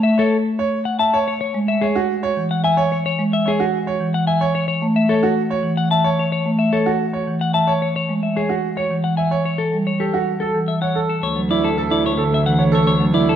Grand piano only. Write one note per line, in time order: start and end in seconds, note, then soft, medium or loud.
0.18 0.36 C#5 medium
0.59 0.77 C#5 medium
0.99 1.18 E5 medium
1.14 1.31 C#5 medium
1.82 2.00 C#5 medium
1.95 2.13 F#4 medium
2.23 2.41 C#5 medium
2.64 2.81 E5 medium
2.77 2.95 C#5 medium
3.46 3.63 C#5 medium
3.60 3.77 F#4 medium
3.87 4.04 C#5 medium
4.27 4.45 E5 medium
4.41 4.59 C#5 medium
5.09 5.27 C#5 medium
5.23 5.41 F#4 medium
5.50 5.68 C#5 medium
5.91 6.09 E5 medium
6.04 6.22 C#5 medium
6.73 6.90 C#5 medium
6.86 7.04 F#4 medium
7.13 7.31 C#5 medium
7.54 7.72 E5 medium
7.67 7.86 C#5 medium
8.36 8.54 C#5 soft
8.49 8.67 F#4 medium
8.77 8.95 C#5 medium
9.18 9.36 E5 medium
9.31 9.49 C#5 medium
10.00 10.18 A4 soft
10.13 10.31 F#4 medium
10.41 10.59 A4 medium
10.82 11.00 C#5 medium
10.95 11.13 A4 medium
11.50 11.68 E4 medium
11.78 11.95 A4 medium
11.91 12.09 E4 medium
12.18 12.36 A4 medium
12.59 12.77 C#5 medium
12.72 12.90 A4 medium
13.13 13.31 E4 medium